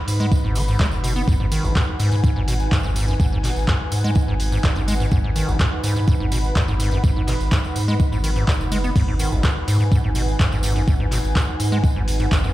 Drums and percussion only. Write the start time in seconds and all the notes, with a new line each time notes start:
0.08 open hi-hat, tambourine
0.20 tambourine
0.32 kick, tambourine
0.55 open hi-hat, tambourine
0.68 tambourine
0.79 kick, clap, tambourine
0.91 tambourine
1.04 open hi-hat, tambourine
1.16 tambourine
1.28 kick, tambourine
1.52 open hi-hat, tambourine
1.64 tambourine
1.76 kick, clap, tambourine
1.99 open hi-hat, tambourine
2.12 tambourine
2.24 kick, tambourine
2.48 open hi-hat, tambourine
2.60 tambourine
2.72 kick, clap, tambourine
2.83 tambourine
2.96 open hi-hat, tambourine
3.08 tambourine
3.20 kick, tambourine
3.44 clap, open hi-hat, tambourine
3.56 tambourine
3.68 kick, clap, tambourine
3.92 open hi-hat, tambourine
4.04 tambourine
4.15 kick, tambourine
4.40 open hi-hat, tambourine
4.52 tambourine
4.64 kick, clap, tambourine
4.76 tambourine
4.88 open hi-hat, tambourine
5.00 tambourine
5.11 kick, tambourine
5.36 open hi-hat, tambourine
5.48 tambourine
5.60 kick, clap, tambourine
5.83 open hi-hat, tambourine
5.96 tambourine
6.07 kick, tambourine
6.32 open hi-hat, tambourine
6.44 tambourine
6.56 kick, clap, tambourine
6.68 tambourine
6.80 open hi-hat, tambourine
6.91 tambourine
7.04 kick, tambourine
7.28 clap, open hi-hat, tambourine
7.40 tambourine
7.52 kick, clap, tambourine
7.64 tambourine
7.76 open hi-hat, tambourine
7.89 tambourine
8.00 kick, tambourine
8.13 tambourine
8.24 open hi-hat, tambourine
8.36 tambourine
8.48 kick, clap, tambourine
8.61 tambourine
8.72 open hi-hat, tambourine
8.84 tambourine
8.96 kick, crash, tambourine
9.19 open hi-hat, tambourine
9.32 tambourine
9.43 kick, clap, tambourine
9.68 open hi-hat, tambourine
9.81 tambourine
9.92 kick, tambourine
10.15 open hi-hat, tambourine
10.28 tambourine
10.40 kick, clap, tambourine
10.52 tambourine
10.63 open hi-hat, tambourine
10.76 tambourine
10.88 kick, tambourine
11.12 clap, open hi-hat, tambourine
11.25 tambourine
11.36 kick, clap, tambourine
11.60 open hi-hat, tambourine
11.72 tambourine
11.84 kick, tambourine
12.08 open hi-hat, tambourine
12.20 tambourine
12.32 kick, clap, tambourine
12.44 tambourine